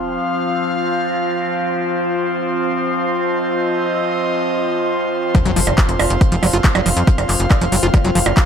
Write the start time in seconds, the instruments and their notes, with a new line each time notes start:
Already playing: synth drone F3 C4, analog synth pad F4 C5 F5, sub drop
3.08 analog synth pad D#5
5.35 acid bass F3, synth drone F3 C4, kick, closed hi-hat, impact
5.46 analog synth bass F1, acid bass F#3, analog synth pad F5, closed hi-hat
5.56 analog synth bass F1, acid bass F3, open hi-hat
5.67 analog synth bass F1, closed hi-hat, percussion blips
5.78 acid bass F3, kick, clap, closed hi-hat
5.89 analog synth bass F1, closed hi-hat
5.99 analog synth bass F1, open hi-hat, percussion blips
6.10 analog synth bass F1, closed hi-hat
6.21 kick, closed hi-hat
6.32 analog synth bass F1, acid bass F3, closed hi-hat
6.43 analog synth bass F1, acid bass F#3, open hi-hat, percussion blips
6.53 analog synth bass F#1, acid bass F4, closed hi-hat
6.64 acid bass F3, kick, clap, closed hi-hat
6.75 analog synth bass F1, acid bass F#3, closed hi-hat, percussion blips
6.86 analog synth bass F1, acid bass F3, open hi-hat
6.97 analog synth bass F2, closed hi-hat
7.07 acid bass F3, kick, closed hi-hat
7.18 analog synth bass F1, closed hi-hat, percussion blips
7.29 analog synth bass F1, clap, open hi-hat
7.40 analog synth bass F1, closed hi-hat
7.51 kick, clap, closed hi-hat, percussion blips
7.61 analog synth bass F1, acid bass F3, closed hi-hat
7.72 analog synth bass F1, acid bass F#3, open hi-hat
7.83 analog synth bass F1, acid bass F4, closed hi-hat
7.94 acid bass F3, kick, closed hi-hat, percussion blips
8.04 analog synth bass F1, acid bass F#3, closed hi-hat
8.15 analog synth bass F1, acid bass F3, open hi-hat
8.26 analog synth bass F#1, closed hi-hat, percussion blips
8.37 acid bass F3, kick, clap, closed hi-hat